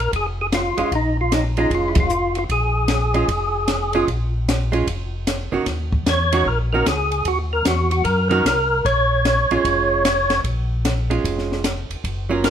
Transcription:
Already playing: tonewheel organ A#4
0.13 tonewheel organ F1 G#4, kick, ride
0.41 tonewheel organ G#4
0.52 tonewheel organ F4, snare, hi-hat pedal, ride
0.77 tonewheel organ F1, hollow-body jazz guitar G#3 C#4 F4, ride
0.92 tonewheel organ A#1 D#4, kick, ride
1.21 tonewheel organ F4
1.32 tonewheel organ D#4, snare, hi-hat pedal, ride
1.57 hollow-body jazz guitar G#3 C#4 F4, tonewheel organ D#4, ride
1.70 tonewheel organ F1, kick, ride
1.75 tonewheel organ F4
1.88 tonewheel organ E4
1.95 kick, ride
2.00 tonewheel organ F4
2.09 hi-hat pedal
2.35 tonewheel organ F4, ride
2.49 tonewheel organ A#1 G#4, kick, ride
2.88 snare, hi-hat pedal, ride
3.14 hollow-body jazz guitar G#3 C#4 F4, ride
3.28 tonewheel organ F1, kick, ride
3.68 snare, hi-hat pedal, ride
3.93 hollow-body jazz guitar G#3 C#4 F4, ride
4.08 tonewheel organ A#1, kick, ride
4.49 snare, hi-hat pedal, ride
4.72 hollow-body jazz guitar G#3 C#4 F4, ride
4.87 tonewheel organ F1, kick, ride
5.27 snare, hi-hat pedal, ride
5.52 tonewheel organ F1, hollow-body jazz guitar D#3 A#3 C#4 F#4
5.66 tonewheel organ D#2, kick, snare, ride
5.92 kick
6.06 tonewheel organ E2 C#5, snare, hi-hat pedal, ride
6.33 hollow-body jazz guitar D#3 A#3 C#4 F#4, ride
6.46 tonewheel organ A#1 A#4, kick
6.73 hollow-body jazz guitar D#3 A#3 C#4 F#4, tonewheel organ A#4
6.85 tonewheel organ C#2 G#4, snare, hi-hat pedal, ride
7.12 ride
7.25 tonewheel organ D#2 F#4, kick, ride
7.53 tonewheel organ A#4
7.65 tonewheel organ E2 F#4, snare, hi-hat pedal, ride
7.91 tonewheel organ F#4, ride
8.04 tonewheel organ F#2 A#4, kick, ride
8.30 hollow-body jazz guitar D#3 A#3 C#4 F#4, tonewheel organ A#4, ride
8.45 tonewheel organ C2, snare, hi-hat pedal, ride
8.85 tonewheel organ A#1 C#5, kick, ride
9.25 snare, hi-hat pedal, ride
9.51 tonewheel organ A#1, hollow-body jazz guitar G#3 C#4 F4, ride
9.65 tonewheel organ F1, kick, ride
10.05 snare, hi-hat pedal, ride
10.30 snare, ride
10.44 tonewheel organ A#1, kick, ride
10.85 snare, hi-hat pedal, ride
11.10 hollow-body jazz guitar G#3 C#4 F4, ride
11.24 tonewheel organ F1, kick, ride
11.38 snare
11.52 snare
11.64 snare, hi-hat pedal, ride
11.89 tonewheel organ F1, ride
12.04 tonewheel organ F#1, kick, ride
12.29 hollow-body jazz guitar F#3 A#3 C#4 F4
12.44 tonewheel organ A#4, snare, hi-hat pedal, ride

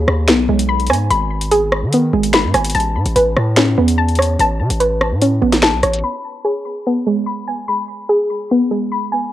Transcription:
Already playing: synth pluck G#4 B5
0.08 808-style bass D#2, cross-stick
0.28 808-style bass B1, synth pluck B3, finger snap, snare, closed hi-hat
0.49 808-style bass B1, synth pluck G#3
0.59 closed hi-hat
0.69 synth pluck B5
0.80 closed hi-hat
0.87 808-style bass G#2, synth pluck G#5, cross-stick, closed hi-hat
0.93 closed hi-hat
1.10 808-style bass G#1, synth pluck B5, closed hi-hat
1.41 closed hi-hat
1.51 synth pluck G#4, closed hi-hat
1.72 cross-stick
1.82 808-style bass D#3
1.93 synth pluck B3, closed hi-hat
2.13 808-style bass G#1, synth pluck G#3
2.23 closed hi-hat
2.33 synth pluck B5, finger snap, snare
2.44 808-style bass G#2
2.54 808-style bass G#1, synth pluck G#5, cross-stick, closed hi-hat
2.65 closed hi-hat
2.70 closed hi-hat
2.75 808-style bass A1, synth pluck A5, closed hi-hat
2.80 closed hi-hat
2.95 808-style bass A2
3.06 808-style bass A1, closed hi-hat
3.16 808-style bass A1, synth pluck B4, closed hi-hat
3.37 808-style bass A2, cross-stick
3.56 synth pluck C#4, finger snap, snare, closed hi-hat
3.78 808-style bass E2, synth pluck B3
3.88 closed hi-hat
3.98 synth pluck A5
4.08 closed hi-hat
4.15 synth pluck C#5, cross-stick, closed hi-hat
4.22 closed hi-hat
4.39 808-style bass A1, synth pluck A5, closed hi-hat
4.60 808-style bass C#3
4.70 808-style bass A1, closed hi-hat
4.80 synth pluck B4, closed hi-hat
5.01 cross-stick
5.11 808-style bass A2
5.22 synth pluck C#4, closed hi-hat
5.42 808-style bass A1, synth pluck B3
5.52 snare, closed hi-hat
5.62 synth pluck A5, finger snap, snare
5.73 808-style bass B1
5.83 808-style bass A1, synth pluck C#5, cross-stick, closed hi-hat
5.93 closed hi-hat
5.99 closed hi-hat
6.04 synth pluck B5, closed hi-hat
6.09 closed hi-hat
6.45 synth pluck G#4
6.87 synth pluck B3
7.07 synth pluck G#3
7.26 synth pluck B5
7.48 synth pluck G#5
7.68 synth pluck B5
8.09 synth pluck G#4
8.51 synth pluck B3
8.71 synth pluck G#3
8.92 synth pluck B5
9.12 synth pluck G#5

